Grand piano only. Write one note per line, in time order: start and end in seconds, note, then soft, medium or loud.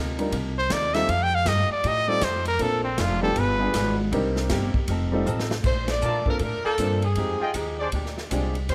0.19 0.31 G3 medium
0.19 0.31 D4 medium
0.19 0.31 D#4 medium
0.19 0.31 F4 medium
0.19 0.31 A#4 medium
0.95 1.07 G3 medium
0.95 1.07 C4 medium
0.95 1.07 D#4 medium
0.95 1.07 F4 medium
0.95 1.07 A4 medium
2.08 2.20 G3 medium
2.08 2.21 C4 medium
2.08 2.21 D#4 medium
2.08 2.21 F4 medium
2.08 2.21 A4 medium
2.59 2.81 A#3 medium
2.59 2.81 C4 medium
2.59 2.81 D4 medium
2.59 2.82 F4 medium
2.59 2.82 A4 medium
3.21 3.34 G3 medium
3.21 3.34 B3 medium
3.21 3.35 D4 medium
3.21 3.35 F4 medium
3.21 3.35 G4 medium
3.59 3.72 G3 medium
3.59 3.72 B3 medium
3.59 3.73 D4 medium
3.59 3.73 F4 medium
3.59 3.73 G#4 medium
4.12 4.69 G3 medium
4.12 4.69 C4 medium
4.12 4.70 D4 medium
4.12 4.70 D#4 medium
4.12 4.70 A#4 medium
5.12 5.25 G3 medium
5.12 5.25 C4 medium
5.12 5.25 D#4 medium
5.12 5.25 F4 medium
5.12 5.25 A4 medium
6.26 6.39 A#3 medium
6.26 6.39 C4 medium
6.26 6.39 D4 medium
6.26 6.39 F4 medium
6.26 6.40 A4 medium
6.78 7.00 A#3 medium
6.78 7.00 C4 soft
6.78 7.00 D4 medium
6.78 7.00 F4 medium
6.78 7.01 C5 medium
7.17 7.38 G#3 medium
7.17 7.38 C4 medium
7.17 7.39 D#4 soft
7.17 7.39 F4 medium
7.17 7.39 G4 medium
8.30 8.52 G#3 medium
8.30 8.53 C4 medium
8.30 8.53 D4 medium
8.30 8.53 F4 medium
8.30 8.53 G#4 medium